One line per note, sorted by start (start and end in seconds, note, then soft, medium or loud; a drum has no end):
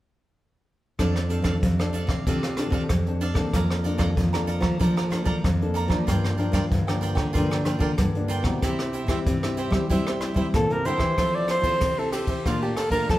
0.99 1.40 F2 medium
0.99 1.59 F3 medium
0.99 1.18 C4 medium
0.99 1.28 D4 medium
0.99 1.18 D4 medium
0.99 1.18 A4 medium
0.99 1.29 A4 medium
0.99 1.29 D5 medium
0.99 1.30 F5 medium
0.99 kick medium
0.99 cross-stick medium
0.99 closed hi-hat medium
1.16 cross-stick medium
1.16 closed hi-hat soft
1.29 1.60 C4 medium
1.29 1.43 D4 soft
1.29 1.60 D4 medium
1.29 1.44 A4 medium
1.29 1.61 A4 medium
1.29 1.44 D5 soft
1.29 1.44 F5 medium
1.29 closed hi-hat soft
1.42 1.58 F2 medium
1.42 1.54 D4 medium
1.42 1.55 A4 medium
1.42 1.55 D5 medium
1.42 1.55 F5 medium
1.42 kick medium
1.42 cross-stick medium
1.42 closed hi-hat soft
1.63 2.04 F2 medium
1.63 2.23 C3 medium
1.63 kick medium
1.63 closed hi-hat medium
1.79 2.22 C4 medium
1.79 2.22 D4 medium
1.79 1.92 A4 soft
1.79 2.22 A4 medium
1.79 1.93 D5 soft
1.79 1.93 F5 medium
1.79 cross-stick medium
1.79 closed hi-hat soft
1.93 2.08 D4 medium
1.93 2.09 A4 medium
1.93 2.09 D5 medium
1.93 2.08 F5 medium
1.93 closed hi-hat medium
2.07 2.22 C3 medium
2.07 2.25 A4 soft
2.07 2.25 D5 soft
2.07 2.24 F5 soft
2.07 kick medium
2.07 cross-stick medium
2.07 closed hi-hat soft
2.27 2.67 C3 medium
2.27 2.87 F3 medium
2.27 2.46 C4 medium
2.27 2.41 D4 medium
2.27 2.46 D4 medium
2.27 2.42 A4 medium
2.27 2.46 A4 medium
2.27 2.42 D5 medium
2.27 2.42 F5 medium
2.27 kick medium
2.27 closed hi-hat medium
2.43 2.57 A4 soft
2.43 2.58 D5 soft
2.43 2.57 F5 soft
2.43 cross-stick medium
2.43 closed hi-hat soft
2.57 2.88 C4 medium
2.57 2.71 D4 soft
2.57 2.88 D4 medium
2.57 2.72 A4 soft
2.57 2.89 A4 medium
2.57 2.72 D5 medium
2.57 2.73 F5 medium
2.57 cross-stick medium
2.57 closed hi-hat medium
2.70 2.85 C3 medium
2.70 2.82 D4 medium
2.70 2.82 A4 medium
2.70 2.83 D5 medium
2.70 2.83 F5 medium
2.70 kick medium
2.89 3.31 F2 medium
2.89 3.51 C3 medium
2.89 kick medium
2.89 cross-stick medium
2.89 closed hi-hat medium
3.06 3.33 C4 medium
3.06 3.34 D4 medium
3.06 3.34 A4 medium
3.06 closed hi-hat soft
3.21 3.36 D4 medium
3.21 3.36 A4 medium
3.21 3.36 D5 medium
3.21 3.35 F5 medium
3.21 closed hi-hat soft
3.34 3.49 C3 medium
3.34 3.80 A#3 medium
3.34 3.80 D4 medium
3.34 3.80 A4 medium
3.34 3.52 D5 soft
3.34 3.51 F5 soft
3.34 kick medium
3.34 cross-stick medium
3.38 3.52 A4 soft
3.53 3.94 F2 medium
3.53 4.14 F3 medium
3.53 3.84 D5 medium
3.53 3.84 F5 medium
3.53 3.85 A#5 medium
3.53 kick medium
3.53 cross-stick medium
3.53 closed hi-hat medium
3.71 cross-stick medium
3.71 closed hi-hat soft
3.84 4.28 A#3 medium
3.84 4.28 D4 medium
3.84 3.97 A4 soft
3.84 4.29 A4 medium
3.84 3.97 D5 medium
3.84 3.98 F5 medium
3.84 3.98 A#5 medium
3.84 closed hi-hat soft
3.98 4.13 F2 medium
3.98 4.09 A4 medium
3.98 4.09 D5 medium
3.98 4.09 F5 medium
3.98 4.09 A#5 medium
3.98 kick medium
3.98 cross-stick medium
3.98 closed hi-hat soft
4.17 4.58 F2 medium
4.17 4.78 F3 medium
4.17 kick medium
4.17 closed hi-hat medium
4.33 4.77 A#3 medium
4.33 4.77 D4 medium
4.33 4.77 A4 medium
4.33 4.46 D5 soft
4.33 4.48 F5 soft
4.33 4.48 A#5 soft
4.33 cross-stick medium
4.33 closed hi-hat soft
4.47 4.63 A4 medium
4.47 4.62 D5 medium
4.47 4.61 F5 medium
4.47 4.61 A#5 medium
4.47 closed hi-hat medium
4.61 4.76 F3 loud
4.61 4.79 D5 soft
4.61 4.78 F5 soft
4.61 4.78 A#5 medium
4.61 kick medium
4.61 cross-stick medium
4.79 5.41 F3 medium
4.79 5.21 F3 loud
4.79 5.08 A#3 medium
4.79 5.08 D4 medium
4.79 4.95 A4 medium
4.79 5.08 A4 medium
4.79 4.95 D5 medium
4.79 4.95 F5 medium
4.79 4.95 A#5 medium
4.79 kick medium
4.79 closed hi-hat medium
4.97 5.10 D5 soft
4.97 5.10 F5 soft
4.97 5.11 A#5 soft
4.97 cross-stick medium
5.10 5.42 A#3 medium
5.10 5.43 D4 medium
5.10 5.24 A4 soft
5.10 5.43 A4 medium
5.10 5.24 D5 soft
5.10 5.25 F5 soft
5.10 5.25 A#5 soft
5.10 cross-stick medium
5.10 closed hi-hat soft
5.25 5.40 F3 medium
5.25 5.36 A4 medium
5.25 5.36 D5 medium
5.25 5.36 F5 medium
5.25 5.37 A#5 medium
5.25 kick medium
5.25 closed hi-hat soft
5.44 5.85 F2 medium
5.44 5.90 F3 medium
5.44 kick medium
5.44 cross-stick medium
5.44 closed hi-hat medium
5.62 5.88 A#3 medium
5.62 5.88 D4 medium
5.62 5.88 A4 medium
5.62 closed hi-hat soft
5.74 5.90 A4 medium
5.74 5.90 D5 medium
5.74 5.89 F5 medium
5.74 5.88 A#5 medium
5.74 closed hi-hat soft
5.88 6.03 F3 medium
5.88 6.34 F3 medium
5.88 6.34 A#3 medium
5.88 6.35 D4 medium
5.88 6.06 D5 soft
5.88 6.06 F5 soft
5.88 6.05 A#5 medium
5.88 kick medium
5.88 cross-stick medium
6.07 6.49 G2 medium
6.07 6.69 G2 medium
6.07 6.36 F4 medium
6.07 6.37 A#4 medium
6.07 6.38 D5 medium
6.07 6.38 G5 medium
6.07 kick medium
6.07 cross-stick medium
6.07 closed hi-hat medium
6.25 cross-stick medium
6.25 closed hi-hat soft
6.38 6.82 F3 medium
6.38 6.82 A#3 medium
6.38 6.82 D4 medium
6.38 6.52 F4 medium
6.38 6.53 A#4 medium
6.38 6.53 D5 soft
6.38 6.53 G5 medium
6.38 closed hi-hat soft
6.52 6.67 G2 medium
6.52 6.63 F4 medium
6.52 6.64 A#4 medium
6.52 6.64 D5 medium
6.52 6.64 G5 medium
6.52 kick medium
6.52 cross-stick medium
6.52 closed hi-hat soft
6.72 7.12 G2 medium
6.72 7.32 D3 medium
6.72 kick medium
6.72 closed hi-hat medium
6.87 7.30 F3 medium
6.87 7.31 A#3 medium
6.87 7.31 D4 medium
6.87 7.01 A#4 soft
6.87 7.01 D5 soft
6.87 7.01 G5 soft
6.87 cross-stick medium
6.87 closed hi-hat soft
7.01 7.17 F4 medium
7.01 7.15 A#4 medium
7.01 7.15 D5 medium
7.01 7.14 G5 medium
7.01 closed hi-hat medium
7.15 7.30 D3 loud
7.15 7.33 A#4 soft
7.15 7.32 D5 soft
7.15 7.32 G5 soft
7.15 kick medium
7.15 cross-stick medium
7.15 closed hi-hat soft
7.33 7.96 G2 medium
7.33 7.76 D3 loud
7.33 7.62 F3 medium
7.33 7.62 A#3 medium
7.33 7.63 D4 medium
7.33 7.49 F4 medium
7.33 7.49 A#4 medium
7.33 7.50 D5 medium
7.33 7.50 G5 medium
7.33 kick medium
7.33 closed hi-hat medium
7.51 7.65 A#4 soft
7.51 7.65 D5 soft
7.51 7.66 G5 medium
7.51 cross-stick medium
7.51 closed hi-hat soft
7.65 8.09 F3 medium
7.65 8.09 A#3 medium
7.65 8.10 D4 medium
7.65 7.79 F4 soft
7.65 7.79 A#4 medium
7.65 7.80 D5 medium
7.65 7.80 G5 medium
7.65 cross-stick medium
7.65 closed hi-hat soft
7.79 7.94 D3 medium
7.79 7.91 F4 medium
7.79 7.91 A#4 medium
7.79 7.91 D5 medium
7.79 7.91 G5 medium
7.79 kick medium
7.98 8.39 G2 medium
7.98 8.60 D3 medium
7.98 kick medium
7.98 cross-stick medium
7.98 closed hi-hat medium
8.15 8.42 F3 medium
8.15 8.42 A#3 medium
8.15 8.43 D4 medium
8.15 closed hi-hat soft
8.28 8.44 F4 medium
8.28 8.45 A#4 medium
8.28 8.45 D5 medium
8.28 8.43 G5 medium
8.28 closed hi-hat medium
8.43 8.58 B2 medium
8.43 8.89 G3 medium
8.43 8.89 C4 medium
8.43 8.89 E4 medium
8.43 8.61 A#4 soft
8.43 8.61 D5 soft
8.43 8.60 G5 soft
8.43 kick medium
8.43 cross-stick medium
8.62 9.23 C3 medium
8.62 9.03 C3 medium
8.62 8.92 E4 medium
8.62 8.93 G4 medium
8.62 8.93 C5 medium
8.62 8.94 E5 medium
8.62 kick medium
8.62 cross-stick medium
8.62 closed hi-hat medium
8.79 cross-stick medium
8.79 closed hi-hat soft
8.93 9.07 E4 medium
8.93 9.08 G4 medium
8.93 9.08 C5 medium
8.93 9.08 E5 medium
8.93 closed hi-hat soft
9.07 9.22 C3 medium
9.07 9.37 G3 medium
9.07 9.37 C4 medium
9.07 9.18 E4 medium
9.07 9.37 E4 medium
9.07 9.19 G4 medium
9.07 9.19 C5 medium
9.07 9.19 E5 medium
9.07 kick medium
9.07 cross-stick medium
9.07 closed hi-hat soft
9.27 9.88 G2 medium
9.27 9.67 C3 medium
9.27 kick medium
9.27 closed hi-hat medium
9.43 9.70 G3 medium
9.43 9.70 C4 medium
9.43 9.70 E4 medium
9.43 9.57 G4 soft
9.43 9.57 C5 soft
9.43 9.57 E5 soft
9.43 cross-stick medium
9.43 closed hi-hat soft
9.57 9.72 E4 medium
9.57 9.73 G4 medium
9.57 9.72 C5 medium
9.57 9.71 E5 medium
9.57 closed hi-hat soft
9.70 9.86 G3 loud
9.70 9.85 G3 medium
9.70 9.85 C4 medium
9.70 9.89 G4 soft
9.70 9.88 C5 soft
9.70 9.88 E5 soft
9.70 kick medium
9.70 cross-stick medium
9.75 9.85 E4 medium
9.89 10.51 C3 medium
9.89 10.31 G3 loud
9.89 10.33 G3 medium
9.89 10.33 C4 medium
9.89 10.04 E4 medium
9.89 10.34 E4 medium
9.89 10.05 G4 medium
9.89 10.05 C5 medium
9.89 10.05 E5 medium
9.89 kick medium
9.89 closed hi-hat medium
10.06 10.20 G4 soft
10.06 10.21 C5 soft
10.06 10.21 E5 medium
10.06 cross-stick medium
10.20 10.35 E4 soft
10.20 10.35 G4 soft
10.20 10.36 C5 soft
10.20 10.36 E5 medium
10.20 cross-stick medium
10.20 closed hi-hat soft
10.34 10.49 G3 medium
10.34 10.80 G3 medium
10.34 10.80 C4 medium
10.34 10.46 E4 medium
10.34 10.80 E4 medium
10.34 10.46 G4 medium
10.34 10.46 C5 medium
10.34 10.46 E5 medium
10.34 kick medium
10.34 closed hi-hat soft
10.54 11.15 G2 medium
10.54 10.68 A#2 medium
10.54 10.74 A4 medium
10.54 kick medium
10.54 cross-stick medium
10.54 closed hi-hat medium
10.70 10.84 C3 medium
10.70 10.87 A#4 medium
10.70 closed hi-hat soft
10.85 10.97 D3 medium
10.85 11.04 G3 medium
10.85 11.04 C4 medium
10.85 11.04 E4 medium
10.85 11.00 E4 medium
10.85 11.01 G4 medium
10.85 11.37 C5 loud
10.85 11.00 C5 medium
10.85 10.99 E5 medium
10.85 closed hi-hat soft
10.98 11.14 E3 medium
10.98 11.16 C5 soft
10.98 11.15 E5 soft
10.98 kick medium
10.98 cross-stick medium
11.02 11.16 G4 soft
11.18 11.78 F3 medium
11.18 11.58 F3 medium
11.18 11.60 C4 medium
11.18 11.61 E4 soft
11.18 11.48 F4 medium
11.18 11.61 A4 medium
11.18 11.49 A4 medium
11.18 11.49 C5 medium
11.18 11.49 E5 medium
11.18 kick medium
11.18 cross-stick medium
11.18 ride soft
11.35 11.50 D5 medium
11.48 11.63 F4 soft
11.48 11.63 A4 medium
11.48 12.00 C5 loud
11.48 11.64 C5 medium
11.48 11.64 E5 medium
11.48 cross-stick medium
11.48 ride soft
11.62 11.77 F3 medium
11.62 11.91 C4 medium
11.62 11.92 E4 medium
11.62 11.74 F4 medium
11.62 11.74 A4 medium
11.62 11.92 A4 medium
11.62 11.74 C5 medium
11.62 11.74 E5 medium
11.62 kick medium
11.62 ride soft
11.81 12.36 C3 medium
11.81 12.42 C3 medium
11.81 kick medium
11.81 cross-stick medium
11.81 ride soft
11.98 12.40 C4 medium
11.98 12.41 E4 medium
11.98 12.41 A4 medium
11.98 12.12 A4 medium
11.98 12.12 A4 soft
11.98 12.13 C5 soft
11.98 12.13 E5 soft
12.12 12.28 F4 medium
12.12 12.47 G4 medium
12.12 12.28 A4 medium
12.12 12.28 C5 medium
12.12 12.28 E5 medium
12.12 cross-stick medium
12.12 ride soft
12.27 12.44 A4 soft
12.27 12.44 C5 soft
12.27 12.44 E5 soft
12.27 kick medium
12.27 ride soft
12.46 12.73 A#2 medium
12.46 13.06 A#2 soft
12.46 12.75 A3 medium
12.46 12.76 D4 medium
12.46 12.61 F4 medium
12.46 12.76 F4 medium
12.46 12.60 A#4 medium
12.46 12.61 D5 medium
12.46 12.61 F5 medium
12.46 12.61 A5 medium
12.46 kick medium
12.46 cross-stick medium
12.46 ride soft
12.62 12.79 G4 medium
12.62 12.77 D5 soft
12.62 12.77 F5 soft
12.62 12.76 A5 soft
12.77 12.91 A4 medium
12.77 12.92 A#4 soft
12.77 12.92 D5 soft
12.77 12.92 F5 soft
12.77 12.93 A5 medium
12.77 cross-stick medium
12.77 ride soft
12.89 13.04 A#2 medium
12.89 13.19 A3 medium
12.89 13.19 D4 medium
12.89 13.07 A#4 medium
12.89 13.02 A#4 medium
12.89 13.02 D5 medium
12.89 kick medium
12.89 ride soft
12.93 13.19 F4 medium
12.93 13.02 F5 medium
12.93 13.02 A5 medium
13.10 13.19 F3 medium
13.10 13.19 F3 soft
13.10 13.19 A4 medium
13.10 kick medium
13.10 cross-stick medium
13.10 ride soft